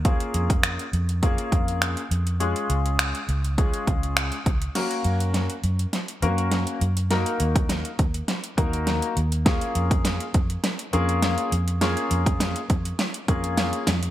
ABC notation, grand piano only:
X:1
M:4/4
L:1/8
Q:1/4=102
K:Bbphr
V:1 name="Grand piano"
[B,DFA]3 z [B,DFA]3 z | [A,DFA]3 z [A,DFA]3 z | [B,DGB]3 z2 [B,DGB]2 z | [B,EGB]3 z2 [B,EGB]2 z |
[B,DFA]3 z2 [B,DFA]2 z | [B,DFA]3 z2 [B,DFA]2 z |]